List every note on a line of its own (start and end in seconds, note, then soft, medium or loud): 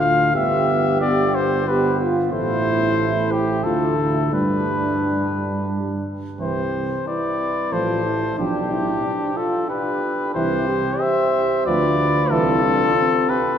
0.00 0.35 D2 soft
0.00 0.35 A3 soft
0.00 0.33 F4 soft
0.00 0.34 F5 medium
0.34 2.28 G1 soft
0.34 0.99 B3 medium
0.34 0.99 G4 soft
0.34 1.64 G4 medium
0.34 1.00 E5 medium
1.00 1.65 B3 soft
1.00 1.65 G4 medium
1.00 1.36 D5 medium
1.35 1.70 C5 medium
1.66 2.34 B3 soft
1.66 1.98 G4 medium
1.66 2.02 G4 soft
1.66 2.00 B4 medium
2.00 2.32 F4 soft
2.00 2.35 F4 soft
2.32 3.66 A1 soft
2.32 3.64 A3 medium
2.32 3.67 E4 medium
2.32 3.33 C5 medium
3.32 3.65 G4 medium
3.64 4.33 D2 soft
3.64 4.34 A3 soft
3.64 3.98 F4 soft
3.64 4.01 F4 soft
3.64 4.33 A4 soft
3.99 4.35 E4 soft
3.99 4.34 E4 soft
4.32 6.04 G2 soft
4.32 6.07 G3 soft
4.32 6.06 D4 soft
4.32 6.05 D4 soft
4.32 5.69 B4 medium
6.39 6.95 C2 soft
6.39 6.63 E3 soft
6.39 7.08 G4 soft
6.39 7.03 C5 medium
7.07 7.75 E4 soft
7.07 7.74 B4 soft
7.07 7.74 D5 medium
7.72 8.27 A1 soft
7.72 7.95 F3 soft
7.72 8.05 F4 soft
7.72 8.38 A4 soft
7.72 8.39 C5 medium
8.05 8.40 E4 soft
8.38 8.93 B1 soft
8.38 8.62 F3 soft
8.38 9.39 D4 soft
8.38 8.73 D4 soft
8.38 9.39 G4 medium
8.72 9.05 E4 soft
9.04 9.36 D4 soft
9.36 9.68 F4 soft
9.36 9.71 F4 soft
9.36 9.69 A4 medium
9.68 10.34 D4 soft
9.68 10.35 G4 medium
9.68 10.34 B4 medium
10.34 10.91 C2 medium
10.34 10.59 E3 soft
10.34 10.68 E4 medium
10.34 11.03 G4 medium
10.34 11.03 C5 medium
10.69 11.69 G4 medium
11.01 11.69 C5 medium
11.01 11.65 E5 medium
11.66 12.21 D2 medium
11.66 11.90 F3 soft
11.66 12.31 F4 soft
11.66 12.33 B4 medium
11.66 12.32 D5 medium
12.31 12.86 C2 medium
12.31 12.54 E3 medium
12.31 12.63 E4 medium
12.31 13.31 F4 medium
12.31 13.31 A4 medium
12.64 12.96 D4 medium
12.97 13.38 C4 medium
13.30 13.58 G4 medium
13.30 13.58 B4 medium